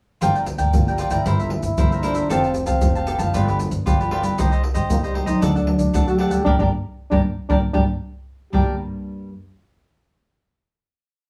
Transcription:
0.21 G1 G2 F3 A#3 D4 F4 A#4 D5 G5, pandeiro, maracas, surdo
0.35 A#4 D5 G5, pandeiro, maracas
0.46 muted cavaquinho stroke, pandeiro, maracas, surdo
0.58 D2 A#4 D5 G5, pandeiro, maracas, surdo
0.73 G1 D3 F3 A#3 D4, pandeiro, maracas, surdo
0.88 G3 A#4 D5 G5, pandeiro, maracas
0.98 F4 A#4 D5 G5, pandeiro, maracas
1.10 G1 E3 A#3 C4 E4 A#4 D5 G5, pandeiro, maracas, surdo
1.26 G1 G2 E4 A#4 C5 E5, pandeiro, maracas, surdo
1.39 A#4 C5 E5, pandeiro, maracas, surdo
1.50 E3 A#3 C4, muted cavaquinho stroke, pandeiro
1.63 G1 E4, pandeiro, maracas, surdo
1.78 G1 G2 E3 A#3 C4 E4 A#4 C5 E5, pandeiro, maracas, surdo
1.91 E3 A#3 C4 A#4 C5 E5, pandeiro, maracas
2.03 D4 E4 A#4 C5 E5, pandeiro, maracas
2.15 A#4 C5 E5, pandeiro, maracas
2.29 F1 F3 A3 C4 G4 A4 F5 A5, pandeiro, maracas, surdo
2.43 G4 F5 A5, pandeiro, maracas
2.54 muted cavaquinho stroke, pandeiro, maracas, surdo
2.66 C2 C4 G4 F5 A5, pandeiro, maracas, surdo
2.81 F1 C3 A3 C4 G4, pandeiro, maracas, surdo
2.95 G4 F5 A5, pandeiro, maracas
3.06 B3 G4 A4 F5 A5, pandeiro, maracas
3.18 F#1 F3 B3 D4 G4 F5 A5, pandeiro, maracas, surdo
3.34 G1 G2 F4 G4 B4 D5, pandeiro, maracas, surdo
3.48 G4 B4 D5, pandeiro, maracas, surdo
3.59 F3 B3 D4, muted cavaquinho stroke, pandeiro, maracas
3.71 G1, pandeiro, maracas, surdo
3.85 G1 D3 F3 B3 D4 F4 G4 B4 D5, pandeiro, maracas, surdo
3.99 F3 B3 D4 G4 B4 D5, pandeiro, maracas
4.11 F4 G4 B4 D5, pandeiro
4.22 G3 C4 D#4 G4 B4 D5, pandeiro, maracas
4.37 C2 C3 D#4 G4 C5 D#5, pandeiro, maracas, surdo
4.51 G4 C5 D#5, pandeiro, maracas
4.63 muted cavaquinho stroke, pandeiro, surdo
4.74 G2 G4 C5 D#5, pandeiro, maracas, surdo
4.90 C2 G2 G3 A#3 C4 D#4, pandeiro, maracas, surdo
5.03 G3 G4 C5 D#5, pandeiro, maracas
5.14 D#4 G4 C5 D#5, pandeiro
5.26 C2 F#3 A3 D4 D#4 G4 C5 D#5, pandeiro, maracas, surdo
5.41 D2 D3 D4 A4 D5 F#5, pandeiro, maracas, surdo
5.55 D4 A4 D5 F#5, pandeiro, maracas, surdo
5.67 F#3 A3 D4, muted cavaquinho stroke, pandeiro
5.78 D2 D4, pandeiro, maracas, surdo
5.94 D2 A2 D4 A4 D5 F#5, pandeiro, maracas, surdo
6.07 F#3 A3 D4 F#4 A4 D5 F#5, pandeiro, maracas
6.17 D4 G4 A4 D5 F#5, pandeiro
6.30 G3 A#3 D4 A4 D5 F#5, pandeiro, maracas
6.45 G1 G3 A#3 D4 G4 A#4 D5, surdo
6.59 G1 G3 A#3 D4 G4 A#4 D5, surdo
7.10 G1 G3 A#3 D4 G4 A#4 D5, surdo
7.49 G1 G3 A#3 D4 G4 A#4 D5, surdo
7.73 G1 G3 A#3 D4 G4 A#4 D5, surdo
8.52 G1 G2 G3 A#3 D4 G4 A#4 D5 G5, surdo

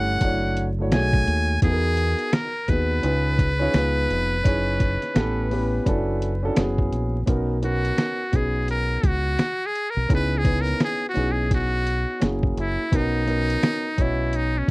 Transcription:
Already playing: G1 A3 C#4 E4 G4 C#5 F#5
0.21 F#1 A3 D4 E4 F#4, kick, closed hi-hat
0.25 C#5
0.57 closed hi-hat
0.78 A3 D4 E4 F#4 C#5
0.92 B1 A3 D#4 F#4 G#4 C#5 G#5, snare, closed hi-hat
1.13 kick
1.28 D#2, closed hi-hat
1.62 E2 B3 D#4 F#4 G#4 A4, kick, closed hi-hat
1.72 A#4
1.97 closed hi-hat
2.19 closed hi-hat
2.33 A#4, snare, closed hi-hat
2.68 D#2 B3 D#4 F#4 G#4 B4, kick, closed hi-hat
3.03 C#2 C#4 D#4 F4 G#4 B4, closed hi-hat
3.39 kick, closed hi-hat
3.59 C#4 D#4 F4 G#4 C#5
3.73 C#2 B3 D#4 F4 G#4 B4, snare, closed hi-hat
4.10 F1, closed hi-hat
4.44 F#1 C#4 D#4 E4 G#4 C#5, kick, closed hi-hat
4.80 kick, closed hi-hat
5.02 snare, closed hi-hat
5.15 A1 B3 C#4 E4 G4 A4, snare, closed hi-hat
5.50 B3 C#4 E4 G4 B4, open hi-hat
5.85 F#1 C#4 D4 E4 F#4 A4, kick, closed hi-hat
6.22 closed hi-hat
6.43 C#4 D4 E4 F#4 A4
6.56 F#1 B3 C#4 E4 F#4 G#4, snare, closed hi-hat
6.78 kick
6.92 A#1, closed hi-hat
7.26 B1 B3 C#4 D#4 F#4 A#4, kick, closed hi-hat
7.61 B3 C#4 D#4 F#4 A#4, closed hi-hat
7.85 closed hi-hat
7.98 snare, closed hi-hat
8.32 B1 B3 C#4 D#4 F#4 G#4, kick, closed hi-hat
8.68 A#4, closed hi-hat
9.03 C#2 F#4, kick, closed hi-hat
9.39 snare, closed hi-hat
9.66 G#4
9.75 closed hi-hat
9.90 A#4
9.97 B1
10.09 C#2 B3 C#4 D#4 E4 G#4, kick, closed hi-hat
10.15 B4
10.38 G#4
10.43 B3 C#4 D#4 E4 B4, kick, closed hi-hat
10.61 A#4
10.67 snare, closed hi-hat
10.80 snare, closed hi-hat
10.84 G#4
11.09 F#4
11.14 B1 B3 C#4 D#4 E4 G#4, closed hi-hat
11.32 G#4
11.51 F#4, kick, closed hi-hat
11.87 closed hi-hat
12.20 F#1 A#3 C#4 E4 F#4 G#4, snare, closed hi-hat
12.43 kick
12.57 F#1 E4, closed hi-hat
12.91 B1 B3 C#4 D#4 F#4 A#4, kick, closed hi-hat
12.96 D#4
13.26 B3 C#4 D#4 F#4 A#4, closed hi-hat
13.50 closed hi-hat
13.63 snare, closed hi-hat
13.97 B1 B3 C#4 F#4 C#5 D#5, kick, closed hi-hat
14.02 E4
14.33 D#4, closed hi-hat
14.58 C#4

